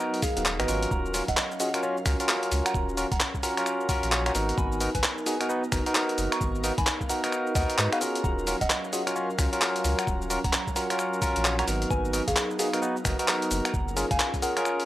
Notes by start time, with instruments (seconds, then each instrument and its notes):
Already playing: analog synth pad F#3 B3 D#4 A#4, tine electric piano B3 D#4 F#4 A#4
0.00 finger snap, cabasa
0.14 open hi-hat, cabasa
0.22 synth bell G#4 F5, kick, open hi-hat, cabasa
0.37 sub bass D#1, tine electric piano B3 D#4 F#4 A#4, closed hi-hat, cabasa
0.45 clap, cabasa
0.60 sub bass G#1, tine electric piano B3 D#4 F#4 A#4, synth bell B4 D#5, finger snap, closed hi-hat, cabasa
0.68 sub bass G#1, tine electric piano C#4 F4 F#4 A#4, open hi-hat, cabasa
0.83 closed hi-hat, cabasa
0.91 sub bass D#1, analog synth pad C#4 A#4 F5, synth bell F#5 A#5, kick, cabasa
1.05 cabasa
1.14 tine electric piano C#4 F4 F#4 A#4, open hi-hat, cabasa
1.28 sub bass D#1, synth bell D#5 F#5, kick, closed hi-hat, cabasa
1.37 clap, cabasa
1.51 cabasa
1.60 tine electric piano C#4 F4 F#4 G#4, synth bell D#5 F#5, open hi-hat, cabasa
1.74 tine electric piano C#4 F4 F#4 A#4, finger snap, closed hi-hat, cabasa
1.83 tine electric piano C#4 F4 F#4 C#5, cabasa
1.97 cabasa
2.06 sub bass C#2, tine electric piano C#4 F4 F#4 A#4, finger snap, kick, open hi-hat, cabasa
2.20 tine electric piano C#4 F4 F#4 A#4, closed hi-hat, cabasa
2.29 clap, open hi-hat, cabasa
2.43 closed hi-hat, cabasa
2.52 sub bass C#2, open hi-hat, cabasa
2.66 synth bell F#5 A#5, finger snap, closed hi-hat, cabasa
2.74 sub bass D#1, kick, cabasa
2.89 cabasa
2.97 tine electric piano C#4 F4 F#4 A#4, open hi-hat, cabasa
3.12 sub bass D#1, synth bell F#5 A#5, kick, closed hi-hat, cabasa
3.20 clap, cabasa
3.35 kick, cabasa
3.43 tine electric piano C#4 F4 F#4 A#4, synth bell F#5 A#5, open hi-hat, cabasa
3.57 tine electric piano C#4 F4 F#4 A#4, finger snap, closed hi-hat, cabasa
3.66 finger snap, cabasa
3.80 cabasa
3.89 tine electric piano C#4 F4 F#4 A#4, synth bell F#5 A#5, kick, open hi-hat, cabasa
4.03 sub bass A#1, closed hi-hat, cabasa
4.12 tine electric piano C#4 F4 F#4 C#5, clap, cabasa
4.26 tine electric piano C#4 F4 F#4 C#5, synth bell F#5 A#5, finger snap, closed hi-hat, cabasa
4.35 sub bass G#1, tine electric piano B3 D#4 F#4 A#4, analog synth pad B3 D#4, open hi-hat, cabasa
4.49 closed hi-hat, cabasa
4.58 sub bass G#1, synth bell G#5 B5, kick, cabasa
4.72 cabasa
4.81 tine electric piano B3 D#4 F#4 A#4, open hi-hat, cabasa
4.95 sub bass G#1, synth bell B4 G#5, kick, closed hi-hat, cabasa
5.03 clap, cabasa
5.18 cabasa
5.26 tine electric piano B3 D#4 F#4 G#4, synth bell B4 G#5, open hi-hat, cabasa
5.41 tine electric piano B3 D#4 F#4 A#4, finger snap, closed hi-hat, cabasa
5.49 tine electric piano B3 D#4 F#4 B4, cabasa
5.63 cabasa
5.72 sub bass F#1, tine electric piano B3 D#4 F#4 A#4, finger snap, kick, open hi-hat, cabasa
5.86 tine electric piano B3 D#4 F#4 A#4, closed hi-hat, cabasa
5.95 clap, open hi-hat, cabasa
6.09 closed hi-hat, cabasa
6.18 sub bass F#1, analog synth pad F5, open hi-hat, cabasa
6.32 synth bell A#5 C#6, finger snap, closed hi-hat, cabasa
6.41 sub bass G#1, kick, cabasa
6.55 cabasa
6.64 tine electric piano B3 D#4 F#4 A#4, open hi-hat, cabasa
6.78 sub bass G#1, synth bell G#5 B5, kick, closed hi-hat, cabasa
6.87 clap, cabasa
7.01 kick, cabasa
7.09 tine electric piano B3 D#4 F#4 A#4, synth bell F#5 A#5, open hi-hat, cabasa
7.24 tine electric piano B3 D#4 F#4 A#4, finger snap, closed hi-hat, cabasa
7.32 finger snap, cabasa
7.47 cabasa
7.55 sub bass D#2, tine electric piano B3 D#4 F#4 A#4, synth bell D#5 F#5, kick, open hi-hat, cabasa
7.70 closed hi-hat, cabasa
7.78 sub bass G#2, tine electric piano B3 D#4 F#4 B4, clap, cabasa
7.92 tine electric piano B3 D#4 F#4 B4, synth bell G#4 F5, finger snap, closed hi-hat, cabasa
8.01 tine electric piano C#4 F4 F#4 A#4, open hi-hat, cabasa
8.15 closed hi-hat, cabasa
8.24 sub bass D#1, analog synth pad F#3 C#4 F5, synth bell F#5 A#5, kick, cabasa
8.38 cabasa
8.47 tine electric piano C#4 F4 F#4 A#4, open hi-hat, cabasa
8.61 sub bass D#1, synth bell D#5 F#5, kick, closed hi-hat, cabasa
8.70 clap, cabasa
8.84 cabasa
8.93 tine electric piano C#4 F4 F#4 G#4, synth bell D#5 F#5, open hi-hat, cabasa
9.07 tine electric piano C#4 F4 F#4 A#4, finger snap, closed hi-hat, cabasa
9.16 tine electric piano C#4 F4 F#4 C#5, cabasa
9.30 cabasa
9.38 sub bass C#2, tine electric piano C#4 F4 F#4 A#4, finger snap, kick, open hi-hat, cabasa
9.53 tine electric piano C#4 F4 F#4 A#4, closed hi-hat, cabasa
9.61 clap, open hi-hat, cabasa
9.76 closed hi-hat, cabasa
9.84 sub bass C#2, open hi-hat, cabasa
9.98 synth bell F#5 A#5, finger snap, closed hi-hat, cabasa
10.07 sub bass D#1, kick, cabasa
10.22 cabasa
10.30 tine electric piano C#4 F4 F#4 A#4, open hi-hat, cabasa
10.44 sub bass D#1, synth bell F#5 A#5, kick, closed hi-hat, cabasa
10.53 clap, cabasa
10.67 kick, cabasa
10.76 tine electric piano C#4 F4 F#4 A#4, synth bell F#5 A#5, open hi-hat, cabasa
10.90 tine electric piano C#4 F4 F#4 A#4, finger snap, closed hi-hat, cabasa
10.99 finger snap, cabasa
11.13 cabasa
11.22 tine electric piano C#4 F4 F#4 A#4, synth bell F#5 A#5, kick, open hi-hat, cabasa
11.36 sub bass A#1, closed hi-hat, cabasa
11.45 tine electric piano C#4 F4 F#4 C#5, clap, cabasa
11.59 tine electric piano C#4 F4 F#4 C#5, synth bell F#5 A#5, finger snap, closed hi-hat, cabasa
11.68 sub bass G#1, tine electric piano B3 D#4 F#4 A#4, analog synth pad B3 D#4, open hi-hat, cabasa
11.82 closed hi-hat, cabasa
11.90 sub bass G#1, synth bell B4 G#5, kick, cabasa
12.05 cabasa
12.13 tine electric piano B3 D#4 F#4 A#4, open hi-hat, cabasa
12.28 sub bass G#1, synth bell G#4 F5, kick, closed hi-hat, cabasa
12.36 clap, cabasa
12.51 cabasa
12.59 tine electric piano B3 D#4 F#4 G#4, synth bell G#4 F5, open hi-hat, cabasa
12.73 tine electric piano B3 D#4 F#4 A#4, finger snap, closed hi-hat, cabasa
12.82 tine electric piano B3 D#4 F#4 B4, cabasa
12.96 cabasa
13.05 sub bass F#1, tine electric piano B3 D#4 F#4 A#4, finger snap, kick, open hi-hat, cabasa
13.19 tine electric piano B3 D#4 F#4 A#4, closed hi-hat, cabasa
13.28 clap, open hi-hat, cabasa
13.42 closed hi-hat, cabasa
13.51 sub bass F#1, open hi-hat, cabasa
13.65 synth bell F#5 A#5, finger snap, closed hi-hat, cabasa
13.74 sub bass F#1, analog synth pad C#4 F4 G#4 A#4, kick, cabasa
13.88 cabasa
13.97 tine electric piano C#4 F4 G#4 A#4, open hi-hat, cabasa
14.11 sub bass F#1, synth bell F5 G#5, kick, closed hi-hat, cabasa
14.20 clap, cabasa
14.34 kick, closed hi-hat, cabasa
14.42 tine electric piano C#4 F4 G#4 A#4, synth bell A#4 F#5, open hi-hat, cabasa
14.57 tine electric piano C#4 F4 G#4 A#4, finger snap, closed hi-hat, cabasa
14.65 finger snap, cabasa
14.80 open hi-hat, cabasa